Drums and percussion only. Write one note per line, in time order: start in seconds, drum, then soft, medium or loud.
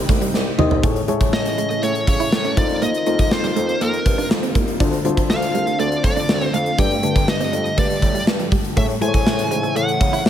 0.09 kick loud
0.09 closed hi-hat medium
0.22 closed hi-hat medium
0.34 snare medium
0.59 mid tom medium
0.71 floor tom medium
0.83 kick loud
0.83 closed hi-hat medium
0.96 closed hi-hat soft
1.08 closed hi-hat medium
1.21 kick medium
1.21 closed hi-hat soft
1.33 snare loud
1.46 closed hi-hat medium
1.58 closed hi-hat medium
1.71 closed hi-hat soft
1.83 closed hi-hat medium
1.95 closed hi-hat medium
2.07 kick medium
2.07 closed hi-hat medium
2.20 closed hi-hat medium
2.32 snare loud
2.45 closed hi-hat soft
2.57 kick loud
2.57 closed hi-hat medium
2.69 closed hi-hat soft
2.82 closed hi-hat medium
2.94 closed hi-hat soft
3.06 closed hi-hat medium
3.19 kick medium
3.19 closed hi-hat soft
3.31 snare loud
3.44 closed hi-hat medium
3.56 closed hi-hat medium
3.69 closed hi-hat soft
3.81 closed hi-hat medium
3.94 closed hi-hat medium
4.06 kick medium
4.06 closed hi-hat medium
4.19 closed hi-hat medium
4.31 snare loud
4.43 closed hi-hat soft
4.55 kick medium
4.55 closed hi-hat medium
4.68 closed hi-hat soft
4.80 kick loud
4.80 closed hi-hat medium
4.93 closed hi-hat medium
5.05 closed hi-hat medium
5.17 kick medium
5.17 closed hi-hat soft
5.30 snare loud
5.42 closed hi-hat medium
5.55 closed hi-hat medium
5.67 closed hi-hat soft
5.79 closed hi-hat medium
5.92 closed hi-hat medium
6.04 kick medium
6.04 closed hi-hat medium
6.17 closed hi-hat medium
6.29 snare loud
6.41 closed hi-hat soft
6.54 closed hi-hat medium
6.66 closed hi-hat soft
6.78 kick loud
6.78 closed hi-hat medium
6.91 closed hi-hat soft
7.03 closed hi-hat medium
7.16 kick medium
7.16 closed hi-hat soft
7.28 snare loud
7.41 closed hi-hat medium
7.53 closed hi-hat medium
7.66 closed hi-hat soft
7.78 kick medium
7.78 closed hi-hat medium
7.90 closed hi-hat medium
8.02 kick medium
8.02 closed hi-hat medium
8.15 closed hi-hat medium
8.27 snare loud
8.40 closed hi-hat soft
8.52 kick medium
8.52 open hi-hat medium
8.64 closed hi-hat soft
8.77 kick loud
8.77 closed hi-hat medium
8.90 closed hi-hat soft
9.02 closed hi-hat medium
9.14 kick medium
9.14 closed hi-hat soft
9.27 snare loud
9.39 closed hi-hat medium
9.51 closed hi-hat medium
9.64 closed hi-hat soft
9.76 closed hi-hat medium
9.89 closed hi-hat medium
10.01 kick medium
10.01 closed hi-hat medium
10.14 closed hi-hat medium
10.26 snare loud